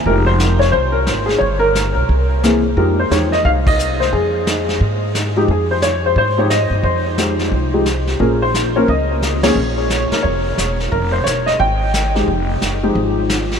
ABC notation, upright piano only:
X:1
M:4/4
L:1/8
Q:"Swing" 1/4=177
K:Fm
V:1 name="Upright piano"
B c2 d c B2 A | d B2 B4 z | B c d e f e2 c | A6 z2 |
A c d c c d e2 | c6 z2 | B c2 d e3 d- | d3 B d3 z |
B c d e g4- | g6 z2 |]
V:2 name="Upright piano"
[F,A,EG]3 z4 z | z6 [=E,B,C^G] z | [F,A,EG] z [F,A,EG] z4 z | z6 z [F,A,EG] |
z4 z [F,A,EG] z2 | z2 [F,A,EG]3 [F,A,EG] z2 | [F,B,DA] z2 [F,B,DB] z3 [F,B,DA] | z8 |
z6 z [F,A,EG] | z3 [F,A,EG]3 z2 |]